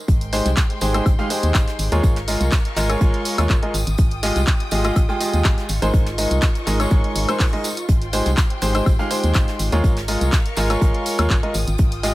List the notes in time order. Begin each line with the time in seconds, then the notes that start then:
0.08 G#1 G#3 G5 C6, kick, closed hi-hat, tambourine
0.21 closed hi-hat
0.33 G#3 D#4 G4 G#4 C5, snare, closed hi-hat, open hi-hat, tambourine
0.45 C2, snare, closed hi-hat, tambourine
0.57 kick, snare, clap, closed hi-hat, tambourine
0.70 closed hi-hat
0.81 G#1 G#3 D#4 G4 G#4 C5, closed hi-hat, open hi-hat, tambourine
0.94 G#3 D#4 G4 G#4 C5, closed hi-hat, tambourine, high woodblock
1.06 G#1, kick, closed hi-hat, tambourine, high woodblock
1.18 G#3 D#4 G4 G#4 F5, closed hi-hat
1.30 G#3 D#4 G4 G#4 C5, closed hi-hat, open hi-hat, tambourine
1.43 D#2, closed hi-hat, tambourine
1.54 G#1, kick, snare, clap, closed hi-hat, tambourine, high woodblock
1.68 snare, closed hi-hat
1.79 G#1, closed hi-hat, open hi-hat, tambourine
1.92 D#2 G#3 F4 G#4 A#4 C#5, closed hi-hat, tambourine
2.03 G#1 A#4 F5 C#6, kick, closed hi-hat, tambourine
2.16 snare, closed hi-hat
2.27 G#3 F4 G#4 A#4 D#5, closed hi-hat, open hi-hat, tambourine
2.41 C2, closed hi-hat, tambourine
2.52 kick, snare, clap, closed hi-hat, tambourine
2.65 closed hi-hat
2.76 G#1 G#3 F4 G#4 A#4 D#5, clap, closed hi-hat, open hi-hat, tambourine
2.89 G#3 F4 G#4 A#4 C#5, closed hi-hat, tambourine, high woodblock
3.01 G#1 G#3 F4 G#4 A#4 C#5, kick, closed hi-hat, tambourine
3.14 closed hi-hat
3.25 closed hi-hat, open hi-hat, tambourine
3.38 D#2 G#3 F4 G#4 A#4 C#5, closed hi-hat, tambourine, high woodblock
3.49 G#1, kick, clap, closed hi-hat, tambourine
3.63 G#3 F4 G#4 A#4 D#5, closed hi-hat
3.74 G#1 F4 G5 D#6, closed hi-hat, open hi-hat, tambourine
3.87 G#1, closed hi-hat, tambourine
3.98 G#1, kick, closed hi-hat, tambourine
4.11 closed hi-hat
4.23 G#3 F4 G4 G#4 D#5, snare, closed hi-hat, open hi-hat, tambourine
4.36 C2, snare, closed hi-hat, tambourine
4.47 kick, snare, clap, closed hi-hat
4.60 closed hi-hat
4.71 G#1 G#3 F4 G4 G#4 D#5, closed hi-hat, open hi-hat, tambourine
4.84 G#3 F4 G4 G#4 D#5, closed hi-hat, tambourine, high woodblock
4.96 G#1, kick, closed hi-hat, tambourine, high woodblock
5.09 G#3 F4 G4 G#4 G5, closed hi-hat
5.20 G#3 F4 G4 G#4 D#5, closed hi-hat, open hi-hat, tambourine
5.33 D#2, closed hi-hat, tambourine
5.45 G#1, kick, snare, clap, closed hi-hat, high woodblock
5.58 snare, closed hi-hat
5.69 G#1 D#5 C#6, closed hi-hat, open hi-hat, tambourine
5.82 G#1 G#3 D#4 G#4 A#4 C5, closed hi-hat, tambourine
5.94 G#1, kick, closed hi-hat, tambourine
6.06 snare, closed hi-hat
6.18 G#3 D#4 G#4 A#4 D#5, closed hi-hat, open hi-hat, tambourine
6.31 C2, closed hi-hat, tambourine
6.42 kick, snare, clap, closed hi-hat, tambourine
6.55 closed hi-hat
6.67 G#1 G#3 D#4 G#4 A#4 D#5, clap, closed hi-hat, open hi-hat, tambourine
6.80 G#3 D#4 G#4 A#4 C#5, closed hi-hat, tambourine, high woodblock
6.91 G#1 G#3 D#4 G#4 A#4 C#5, kick, closed hi-hat, tambourine
7.04 closed hi-hat
7.15 G#1, closed hi-hat, open hi-hat, tambourine
7.29 G#3 D#4 G#4 A#4 C5, closed hi-hat, tambourine, high woodblock
7.40 kick, snare, clap, open hi-hat, tambourine
7.53 G#3 D#4 G#4 A#4 D#5, closed hi-hat
7.64 closed hi-hat, open hi-hat, tambourine
7.77 closed hi-hat, tambourine
7.88 G#1 G5 C6, kick, closed hi-hat, tambourine
8.02 closed hi-hat
8.13 G#3 D#4 G4 G#4 C5, snare, closed hi-hat, open hi-hat, tambourine
8.25 C2, snare, closed hi-hat, tambourine
8.37 kick, snare, clap, closed hi-hat, tambourine
8.50 closed hi-hat
8.61 G#1 G#3 D#4 G4 G#4 C5, closed hi-hat, open hi-hat, tambourine
8.75 G#3 D#4 G4 G#4 C5, closed hi-hat, tambourine, high woodblock
8.86 G#1, kick, closed hi-hat, tambourine, high woodblock
8.99 G#3 D#4 G4 G#4 F5, closed hi-hat
9.11 G#3 D#4 G4 G#4 C5, closed hi-hat, open hi-hat, tambourine
9.24 D#2, closed hi-hat, tambourine
9.34 G#1, kick, snare, clap, closed hi-hat, tambourine, high woodblock
9.48 snare, closed hi-hat
9.59 G#1, closed hi-hat, open hi-hat, tambourine
9.72 D#2 G#3 F4 G#4 A#4 C#5, closed hi-hat, tambourine
9.84 G#1 A#4 F5 C#6, kick, closed hi-hat, tambourine
9.97 snare, closed hi-hat
10.08 G#3 F4 G#4 A#4 D#5, closed hi-hat, open hi-hat, tambourine
10.21 C2, closed hi-hat, tambourine
10.32 kick, snare, clap, closed hi-hat
10.46 closed hi-hat
10.57 G#1 G#3 F4 G#4 A#4 D#5, clap, closed hi-hat, open hi-hat, tambourine
10.70 G#3 F4 G#4 A#4 C#5, closed hi-hat, tambourine, high woodblock
10.81 G#1 G#3 F4 G#4 A#4 C#5, kick, closed hi-hat, tambourine
10.94 closed hi-hat
11.06 closed hi-hat, open hi-hat, tambourine
11.18 D#2 G#3 F4 G#4 A#4 C#5, closed hi-hat, tambourine, high woodblock
11.30 G#1, kick, clap, closed hi-hat, tambourine
11.43 G#3 F4 G#4 A#4 D#5, closed hi-hat
11.54 G#1 F4 G5 D#6, closed hi-hat, open hi-hat, tambourine
11.67 G#1, closed hi-hat, tambourine
11.78 G#1, kick, closed hi-hat, tambourine
11.92 closed hi-hat
12.03 G#3 F4 G4 G#4 D#5, snare, closed hi-hat, open hi-hat, tambourine